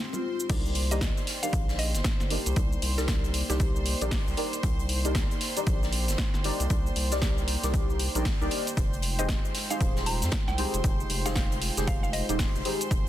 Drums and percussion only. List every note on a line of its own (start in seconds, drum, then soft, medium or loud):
0.13 high bongo medium
0.13 shaker soft
0.40 shaker medium
0.50 kick loud
0.50 closed hi-hat medium
0.50 crash loud
0.50 shaker medium
0.65 closed hi-hat soft
0.65 shaker soft
0.75 closed hi-hat medium
0.75 open hi-hat loud
0.91 closed hi-hat medium
0.91 shaker medium
1.01 kick loud
1.01 snare loud
1.01 closed hi-hat medium
1.01 shaker medium
1.17 closed hi-hat soft
1.17 shaker soft
1.27 snare medium
1.27 closed hi-hat medium
1.27 open hi-hat medium
1.43 closed hi-hat medium
1.43 shaker medium
1.53 kick loud
1.53 closed hi-hat medium
1.53 shaker medium
1.68 snare medium
1.68 shaker soft
1.79 closed hi-hat medium
1.79 open hi-hat loud
1.95 snare soft
1.95 closed hi-hat medium
1.95 shaker medium
2.04 kick loud
2.04 snare loud
2.04 closed hi-hat medium
2.04 shaker medium
2.20 snare soft
2.20 shaker soft
2.30 closed hi-hat medium
2.30 open hi-hat medium
2.46 closed hi-hat medium
2.46 shaker medium
2.56 kick loud
2.56 closed hi-hat medium
2.56 shaker medium
2.73 shaker soft
2.82 closed hi-hat medium
2.82 open hi-hat loud
2.98 snare medium
2.98 closed hi-hat medium
2.98 shaker medium
3.08 kick loud
3.08 snare loud
3.08 closed hi-hat medium
3.08 shaker medium
3.24 closed hi-hat soft
3.24 shaker soft
3.34 closed hi-hat medium
3.34 open hi-hat medium
3.50 snare soft
3.50 closed hi-hat medium
3.50 shaker medium
3.60 kick loud
3.60 closed hi-hat medium
3.60 shaker medium
3.76 shaker soft
3.86 closed hi-hat medium
3.86 open hi-hat loud
4.01 closed hi-hat medium
4.01 shaker medium
4.11 kick loud
4.11 snare loud
4.11 closed hi-hat medium
4.11 open hi-hat medium
4.11 shaker medium
4.28 shaker soft
4.37 closed hi-hat medium
4.37 open hi-hat medium
4.53 closed hi-hat medium
4.53 shaker medium
4.63 kick loud
4.63 closed hi-hat medium
4.63 closed hi-hat loud
4.63 shaker soft
4.79 closed hi-hat soft
4.79 shaker soft
4.89 closed hi-hat medium
4.89 open hi-hat loud
5.05 closed hi-hat medium
5.05 shaker medium
5.15 kick loud
5.15 snare loud
5.15 closed hi-hat medium
5.15 shaker medium
5.31 closed hi-hat soft
5.31 shaker soft
5.41 snare medium
5.41 closed hi-hat medium
5.41 open hi-hat medium
5.57 closed hi-hat medium
5.57 shaker medium
5.67 kick loud
5.67 closed hi-hat medium
5.67 shaker medium
5.83 snare soft
5.83 shaker soft
5.93 closed hi-hat medium
5.93 open hi-hat loud
6.08 snare soft
6.08 closed hi-hat medium
6.08 shaker medium
6.18 kick loud
6.18 snare loud
6.18 closed hi-hat medium
6.18 shaker medium
6.34 snare soft
6.34 shaker soft
6.44 closed hi-hat medium
6.44 open hi-hat medium
6.60 closed hi-hat medium
6.60 shaker medium
6.70 kick loud
6.70 closed hi-hat medium
6.70 shaker medium
6.86 shaker soft
6.96 closed hi-hat medium
6.96 open hi-hat loud
7.12 snare medium
7.12 closed hi-hat medium
7.12 shaker medium
7.22 kick loud
7.22 snare loud
7.22 closed hi-hat medium
7.22 shaker medium
7.37 closed hi-hat soft
7.37 shaker soft
7.48 closed hi-hat medium
7.48 open hi-hat medium
7.63 snare soft
7.63 closed hi-hat soft
7.63 shaker medium
7.74 kick loud
7.74 closed hi-hat medium
7.74 shaker medium
7.90 shaker soft
7.99 closed hi-hat medium
7.99 open hi-hat loud
8.15 closed hi-hat medium
8.15 shaker medium
8.25 kick loud
8.25 snare loud
8.25 closed hi-hat medium
8.25 open hi-hat medium
8.25 shaker medium
8.42 shaker soft
8.51 closed hi-hat medium
8.51 open hi-hat medium
8.67 closed hi-hat soft
8.67 shaker medium
8.77 kick loud
8.77 closed hi-hat medium
8.77 shaker medium
8.93 closed hi-hat soft
8.93 shaker soft
9.02 closed hi-hat medium
9.02 open hi-hat loud
9.19 closed hi-hat medium
9.19 shaker medium
9.29 kick loud
9.29 snare loud
9.29 closed hi-hat medium
9.29 shaker medium
9.45 closed hi-hat soft
9.45 shaker soft
9.55 snare medium
9.55 closed hi-hat medium
9.55 open hi-hat medium
9.70 closed hi-hat soft
9.70 shaker medium
9.81 kick loud
9.81 closed hi-hat medium
9.81 closed hi-hat loud
9.81 shaker medium
9.96 snare medium
9.96 shaker soft
10.06 closed hi-hat medium
10.06 open hi-hat loud
10.22 snare soft
10.22 closed hi-hat medium
10.22 shaker medium
10.31 kick loud
10.31 snare loud
10.31 closed hi-hat medium
10.31 shaker medium
10.48 snare soft
10.48 shaker soft
10.58 closed hi-hat medium
10.58 open hi-hat medium
10.74 closed hi-hat soft
10.74 shaker medium
10.84 kick loud
10.84 closed hi-hat medium
10.84 shaker medium
11.00 shaker soft
11.10 closed hi-hat medium
11.10 open hi-hat loud
11.26 snare medium
11.26 closed hi-hat medium
11.26 shaker medium
11.36 kick loud
11.36 snare loud
11.36 closed hi-hat medium
11.36 shaker medium
11.52 closed hi-hat soft
11.52 shaker soft
11.62 closed hi-hat medium
11.62 open hi-hat medium
11.77 snare soft
11.77 closed hi-hat medium
11.77 shaker medium
11.87 kick loud
11.87 closed hi-hat medium
11.87 closed hi-hat loud
11.87 shaker medium
12.04 shaker soft
12.13 closed hi-hat medium
12.13 open hi-hat loud
12.29 closed hi-hat medium
12.29 shaker medium
12.39 kick loud
12.39 snare loud
12.39 closed hi-hat medium
12.39 open hi-hat medium
12.39 shaker medium
12.55 shaker soft
12.65 closed hi-hat medium
12.65 open hi-hat medium
12.81 closed hi-hat medium
12.81 shaker medium
12.91 kick loud
12.91 closed hi-hat medium
12.91 shaker medium